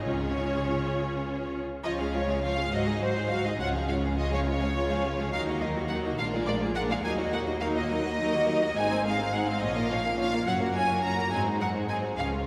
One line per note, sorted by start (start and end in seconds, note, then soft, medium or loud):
0.04 1.64 C#2 medium
0.04 1.64 C#3 medium
0.04 1.60 C#4 soft
0.04 1.60 F4 soft
0.04 1.61 G#4 medium
0.04 1.61 C#5 medium
0.04 1.52 C#5 medium
1.83 2.68 C#2 medium
1.83 2.68 C#3 medium
1.83 1.98 F3 medium
1.83 1.97 F4 medium
1.83 1.98 F4 medium
1.83 1.98 C#5 medium
1.83 1.92 D#5 medium
1.98 2.14 G#3 soft
1.98 2.14 C#4 soft
1.98 2.13 G#4 soft
1.98 2.13 F5 soft
2.13 2.28 F3 soft
2.13 2.28 F4 soft
2.13 2.29 F4 medium
2.13 2.29 C#5 medium
2.13 2.43 C#5 medium
2.27 2.43 G#3 soft
2.27 2.43 C#4 soft
2.27 2.44 G#4 soft
2.27 2.44 F5 soft
2.42 2.56 F3 soft
2.42 2.56 F4 soft
2.42 2.57 F4 soft
2.42 2.57 C#5 soft
2.42 2.72 F5 medium
2.57 2.72 G#3 soft
2.57 2.72 C#4 soft
2.57 2.73 G#4 soft
2.57 2.73 F5 soft
2.71 3.57 G#1 medium
2.71 3.57 G#2 medium
2.71 2.86 F#3 medium
2.71 2.86 F#4 soft
2.71 2.86 F#4 medium
2.71 2.86 C5 medium
2.71 3.01 D#5 medium
2.86 3.01 G#3 soft
2.86 3.01 D#4 soft
2.86 3.01 G#4 soft
2.86 3.01 D#5 soft
3.01 3.16 F#3 soft
3.01 3.15 F#4 soft
3.01 3.16 F#4 medium
3.01 3.29 C5 medium
3.01 3.16 C5 soft
3.15 3.30 G#3 soft
3.15 3.30 D#4 soft
3.15 3.31 G#4 soft
3.15 3.31 D#5 soft
3.30 3.43 F#3 soft
3.30 3.43 F#4 medium
3.30 3.44 F#4 soft
3.30 3.44 C5 soft
3.30 3.45 F5 medium
3.45 3.58 G#3 soft
3.45 3.59 D#4 soft
3.45 3.60 G#4 soft
3.45 3.59 D#5 medium
3.45 3.60 D#5 soft
3.59 5.33 C#2 medium
3.59 5.32 C#3 medium
3.59 3.72 G#3 medium
3.59 3.72 F4 medium
3.59 3.73 F4 medium
3.59 3.73 C#5 medium
3.59 3.67 F#5 medium
3.73 3.87 F3 soft
3.73 3.87 C#4 soft
3.73 3.89 G#4 soft
3.73 3.88 F5 soft
3.88 4.02 G#3 soft
3.88 4.02 F4 soft
3.88 4.03 F4 soft
3.88 4.03 C#5 soft
3.88 3.96 F5 medium
4.02 4.16 F3 soft
4.02 4.16 C#4 soft
4.02 4.18 G#4 medium
4.02 4.18 F5 soft
4.16 4.29 G#3 soft
4.16 4.29 F4 soft
4.16 4.30 F4 soft
4.16 4.30 C#5 soft
4.16 4.31 D#5 medium
4.31 4.46 F3 soft
4.31 4.46 C#4 soft
4.31 4.46 G#4 soft
4.31 4.39 C#5 medium
4.31 4.46 F5 soft
4.46 4.60 G#3 soft
4.46 4.60 F4 soft
4.46 4.61 F4 soft
4.46 4.60 C#5 medium
4.46 5.31 C#5 medium
4.60 4.75 F3 soft
4.60 4.75 C#4 soft
4.60 4.75 G#4 soft
4.60 4.75 F5 soft
4.74 4.88 G#3 soft
4.74 4.88 F4 medium
4.74 4.88 F4 soft
4.74 4.88 C#5 medium
4.89 5.04 F3 soft
4.89 5.04 C#4 soft
4.89 5.04 G#4 soft
4.89 5.04 F5 soft
5.03 5.18 G#3 medium
5.03 5.18 F4 medium
5.03 5.19 F4 medium
5.03 5.20 C#5 soft
5.17 5.32 F3 soft
5.17 5.32 C#4 soft
5.17 5.33 G#4 soft
5.17 5.33 F5 soft
5.32 6.18 D#2 medium
5.32 6.19 D#3 medium
5.32 5.46 F#3 medium
5.32 5.46 D#4 medium
5.32 5.46 A#4 medium
5.32 5.41 F5 medium
5.47 5.62 A#3 soft
5.47 5.62 F#4 soft
5.47 5.62 D#5 soft
5.61 5.75 F#3 soft
5.61 5.76 D#4 soft
5.61 5.76 A#4 soft
5.61 5.69 D#5 medium
5.76 5.90 A#3 soft
5.76 5.90 F#4 soft
5.76 5.91 F#4 soft
5.76 5.91 D#5 soft
5.89 6.03 F#3 soft
5.89 6.03 D#4 soft
5.89 6.04 D#4 soft
5.89 6.04 A#4 soft
5.89 5.97 F#5 medium
6.05 6.19 A#3 medium
6.05 6.19 F#4 soft
6.05 6.19 F#4 medium
6.05 6.19 D#5 soft
6.18 7.04 A#1 medium
6.18 7.04 A#2 medium
6.18 6.32 G#3 soft
6.18 6.32 D4 soft
6.18 6.32 F4 medium
6.18 6.32 A#4 medium
6.18 6.27 F5 medium
6.32 6.47 A#3 medium
6.32 6.47 F4 medium
6.32 6.48 G#4 medium
6.32 6.48 D5 medium
6.47 6.61 G#3 medium
6.47 6.61 D4 soft
6.47 6.61 F4 medium
6.47 6.61 A#4 medium
6.47 6.56 D5 medium
6.62 6.76 A#3 soft
6.62 6.76 F4 soft
6.62 6.76 G#4 soft
6.62 6.76 D5 soft
6.75 6.89 G#3 medium
6.75 6.89 D4 medium
6.75 6.89 F4 medium
6.75 6.89 A#4 soft
6.75 6.81 F#5 medium
6.89 7.05 A#3 medium
6.89 7.05 F4 soft
6.89 7.04 G#4 medium
6.89 7.04 D5 soft
6.89 6.96 F5 medium
7.03 8.72 D#2 medium
7.03 7.18 F#3 medium
7.03 7.17 D#4 medium
7.03 7.18 D#4 medium
7.03 7.17 A#4 medium
7.03 7.11 G#5 medium
7.18 7.34 A#3 soft
7.18 7.33 F#4 medium
7.18 7.34 F#4 medium
7.18 7.33 D#5 medium
7.33 7.48 F#3 medium
7.33 7.48 D#4 soft
7.33 7.48 D#4 medium
7.33 7.48 A#4 medium
7.33 7.41 F#5 medium
7.46 7.62 A#3 medium
7.46 7.61 F#4 soft
7.46 7.62 F#4 medium
7.46 7.61 D#5 soft
7.61 7.75 F#3 soft
7.61 7.75 D#4 medium
7.61 7.76 D#4 soft
7.61 7.75 A#4 soft
7.61 7.66 F5 medium
7.76 7.91 A#3 medium
7.76 7.90 F#4 medium
7.76 7.91 F#4 medium
7.76 7.90 D#5 medium
7.90 8.05 F#3 medium
7.90 8.05 D#4 medium
7.90 8.05 A#4 medium
7.90 8.74 D#5 medium
8.04 8.19 A#3 medium
8.04 8.19 F#4 soft
8.04 8.19 F#4 medium
8.04 8.19 D#5 medium
8.19 8.32 F#3 medium
8.19 8.32 D#4 soft
8.19 8.32 D#4 medium
8.19 8.33 A#4 medium
8.33 8.47 A#3 medium
8.33 8.47 F#4 soft
8.33 8.48 F#4 medium
8.33 8.48 D#5 medium
8.47 8.61 F#3 medium
8.47 8.61 D#4 medium
8.47 8.62 D#4 medium
8.47 8.61 A#4 medium
8.61 8.76 A#3 medium
8.61 8.75 F#4 medium
8.61 8.76 F#4 medium
8.61 8.75 D#5 medium
8.74 9.59 G#1 medium
8.74 9.59 G#2 medium
8.74 8.89 G#3 medium
8.74 8.88 C4 medium
8.74 8.89 D#4 medium
8.74 8.88 G#4 medium
8.74 9.05 G#5 medium
8.89 9.04 C4 medium
8.89 9.03 D#4 medium
8.89 9.04 C5 medium
9.04 9.18 G#3 medium
9.04 9.18 C4 medium
9.04 9.19 D#4 medium
9.04 9.18 G#4 medium
9.04 9.33 F5 medium
9.17 9.33 C4 medium
9.17 9.32 D#4 medium
9.17 9.32 C5 medium
9.31 9.46 G#3 medium
9.31 9.45 C4 medium
9.31 9.46 D#4 medium
9.31 9.45 G#4 medium
9.31 9.48 F#5 medium
9.46 9.62 C4 medium
9.46 9.61 D#4 medium
9.46 9.61 C5 medium
9.46 9.61 F5 medium
9.60 10.46 A#1 medium
9.60 10.46 A#2 medium
9.60 9.75 F3 medium
9.60 9.75 C#4 medium
9.60 9.74 F4 medium
9.60 9.74 C#5 medium
9.60 9.89 D#5 medium
9.75 9.90 A#3 medium
9.75 9.90 F4 medium
9.75 9.89 A#4 medium
9.75 9.89 F5 medium
9.89 10.04 F3 medium
9.89 10.04 C#4 medium
9.89 10.04 F4 medium
9.89 10.04 C#5 medium
9.89 10.18 F5 medium
10.03 10.18 A#3 soft
10.03 10.18 F4 soft
10.03 10.17 A#4 medium
10.03 10.18 F5 soft
10.18 10.31 F3 medium
10.18 10.31 C#4 medium
10.18 10.31 F4 soft
10.18 10.31 C#5 medium
10.18 10.46 F5 medium
10.32 10.46 A#3 medium
10.32 10.47 F4 medium
10.32 10.46 A#4 medium
10.32 10.47 F5 medium
10.46 11.32 F#1 medium
10.46 11.32 F#2 medium
10.46 10.60 F#3 medium
10.46 10.59 C#4 medium
10.46 10.59 F#4 medium
10.46 10.59 C#5 medium
10.46 10.55 F#5 medium
10.60 10.75 A#3 soft
10.60 10.75 F#4 soft
10.60 10.74 A#4 soft
10.60 10.74 F#5 medium
10.74 10.89 F#3 medium
10.74 10.90 C#4 medium
10.74 10.89 F#4 soft
10.74 10.89 C#5 medium
10.74 11.03 G#5 medium
10.89 11.04 A#3 soft
10.89 11.04 F#4 medium
10.89 11.04 A#4 medium
10.89 11.03 F#5 soft
11.02 11.17 F#3 soft
11.02 11.17 C#4 soft
11.02 11.16 F#4 soft
11.02 11.16 C#5 soft
11.02 11.32 A#5 medium
11.17 11.33 A#3 medium
11.17 11.33 F#4 soft
11.17 11.32 A#4 medium
11.17 11.32 F#5 soft
11.31 12.18 G#1 medium
11.31 12.19 G#2 medium
11.31 11.46 F#3 soft
11.31 11.46 C4 soft
11.31 11.45 D#4 medium
11.31 11.44 G#4 medium
11.31 11.41 G#5 medium
11.44 11.61 G#3 soft
11.44 11.61 D#4 soft
11.44 11.59 F#4 soft
11.44 11.59 C5 soft
11.58 11.75 F#3 soft
11.58 11.75 C4 soft
11.58 11.74 D#4 soft
11.58 11.74 G#4 medium
11.58 11.69 F#5 medium
11.72 11.89 G#3 soft
11.72 11.89 D#4 soft
11.72 11.88 F#4 soft
11.72 11.88 C5 soft
11.87 12.03 F#3 soft
11.87 12.03 C4 medium
11.87 12.01 D#4 soft
11.87 12.01 G#4 soft
11.87 11.97 G#5 medium
12.02 12.18 G#3 soft
12.02 12.18 D#4 soft
12.02 12.17 F#4 soft
12.02 12.17 C5 soft
12.16 12.47 C#2 medium
12.16 12.32 F3 medium
12.16 12.32 C#4 medium
12.16 12.31 G#4 soft
12.16 12.27 F5 medium
12.32 12.47 G#3 soft
12.32 12.47 F4 soft
12.32 12.47 C#5 soft